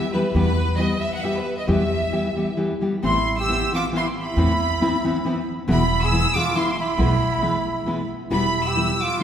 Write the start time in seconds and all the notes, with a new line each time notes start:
0.12 E3 G3 B3 G4 B4
0.34 E2 B2 E3 G3 B3 G4 B4
0.77 E3 G3 B3 G4 D#5
1.01 E5
1.13 F#5
1.22 E3 G3 B3 G4 E5
1.36 B4
1.57 D#5
1.67 E2 B2 E3 G3 B3 G4 E5
2.12 E3 G3 B3 G4
2.36 E3 G3 B3 G4
2.57 E3 G3 B3 G4
2.81 E3 G3 B3 G4
3.03 A1 A2 E3 B3 C4 E4 C6
3.39 G4 E6
3.48 E3 B3 C4 E4
3.72 E3 B3 C4 E4 F4 D6
3.92 E3 B3 C4 E4
3.97 C6
4.20 E4 B5
4.36 E2 A2 E3 B3 C4 E4
4.81 E3 B3 C4 E4
5.04 E3 B3 C4 E4
5.25 E3 B3 C4 E4
5.68 E1 E2 B2 E3 G#3 B3 E4 B5
6.02 G#4 E6
6.12 E3 G#3 B3 E4
6.34 E3 G#3 B3 E4 F4 D6
6.55 E3 G#3 B3 E4 C6
6.79 E4 B5
6.97 B1 E2 B2 E3 G#3 B3 E4
7.42 E3 G#3 B3 E4
7.86 E3 G#3 B3 E4
8.31 E1 E2 B2 E3 G3 B3 E4 B5
8.65 G4 E6
8.75 E3 G3 B3 E4
9.01 F4 D6
9.20 E3